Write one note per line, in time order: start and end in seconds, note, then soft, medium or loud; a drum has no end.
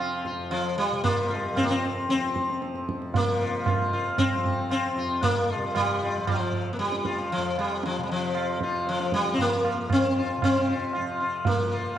0.00 0.31 F2 medium
0.00 0.91 C3 soft
0.00 1.53 F3 medium
0.00 0.35 C4 medium
0.00 0.23 F4 soft
0.25 0.50 F4 soft
0.25 tabla ke medium
0.31 2.73 F2 medium
0.51 0.77 F3 medium
0.51 tabla na medium
0.78 1.03 G3 medium
0.92 3.12 C3 medium
1.04 1.40 A#3 medium
1.04 1.28 F4 soft
1.04 tabla tin medium
1.04 tabla ge medium
1.30 1.54 F4 soft
1.40 1.58 G3 medium
1.53 2.14 F3 medium
1.53 1.64 C4 medium
1.53 tabla na medium
1.53 tabla ge medium
1.63 1.70 A#3 medium
1.70 2.09 C4 medium
1.83 tabla te medium
2.09 3.17 C4 medium
2.09 tabla te medium
2.14 3.73 F3 medium
2.22 tabla te medium
2.36 tabla ke medium
2.50 tabla te medium
2.62 tabla te medium
2.74 4.95 F2 soft
2.74 tabla te medium
2.89 tabla ke medium
3.02 tabla te medium
3.13 5.55 C3 medium
3.13 3.89 A#3 medium
3.13 tabla tin loud
3.13 tabla ge medium
3.41 3.65 F4 soft
3.66 3.91 F4 soft
3.66 tabla na medium
3.66 tabla ge medium
3.73 4.35 F3 soft
3.93 4.17 F4 soft
4.18 4.70 C4 loud
4.18 tabla na medium
4.18 tabla ge medium
4.35 6.17 F3 medium
4.45 tabla ge soft
4.71 5.25 C4 medium
4.71 tabla na medium
4.95 7.37 F2 medium
4.95 5.22 F4 soft
5.23 5.59 A#3 medium
5.23 tabla tin medium
5.23 tabla ge medium
5.50 5.74 F4 soft
5.56 7.98 C3 medium
5.56 5.75 G3 medium
5.75 6.27 G3 medium
5.75 tabla na medium
5.75 tabla ge medium
6.02 6.26 F4 soft
6.17 6.77 F3 medium
6.27 6.72 F3 medium
6.27 tabla na medium
6.27 tabla ge medium
6.53 tabla ge medium
6.73 6.79 A#3 medium
6.77 8.58 F3 medium
6.77 7.32 G3 medium
6.77 tabla te medium
6.92 tabla te medium
7.05 7.29 F4 soft
7.05 tabla ke medium
7.18 tabla te medium
7.31 7.58 F3 medium
7.31 tabla tin medium
7.38 9.77 F2 medium
7.58 7.85 G3 medium
7.58 tabla na medium
7.83 8.02 F3 medium
7.83 tabla te medium
7.98 10.37 C3 medium
8.03 8.10 G3 medium
8.09 8.59 F3 medium
8.09 tabla te medium
8.35 8.60 F4 soft
8.35 tabla na medium
8.58 9.18 F3 medium
8.58 tabla ke medium
8.63 8.86 F4 soft
8.87 9.13 F3 medium
8.87 tabla te medium
9.00 tabla te medium
9.12 9.33 G3 medium
9.12 tabla ke medium
9.18 10.96 F3 medium
9.25 tabla te medium
9.33 9.39 C4 medium
9.38 9.92 A#3 loud
9.38 tabla tin medium
9.38 tabla ge medium
9.65 tabla na medium
9.78 11.98 F2 medium
9.90 10.43 C4 medium
9.90 tabla na medium
9.90 tabla ge medium
10.18 10.41 F4 soft
10.37 11.98 C3 medium
10.42 11.46 C4 medium
10.42 tabla na medium
10.42 tabla ge medium
10.68 10.93 F4 soft
10.68 tabla te medium
10.93 11.57 F3 medium
10.93 11.18 F4 soft
10.93 tabla na medium
11.20 11.44 F4 soft
11.45 11.98 A#3 medium
11.45 tabla tin medium
11.45 tabla ge medium
11.57 11.98 F3 medium
11.72 11.95 F4 soft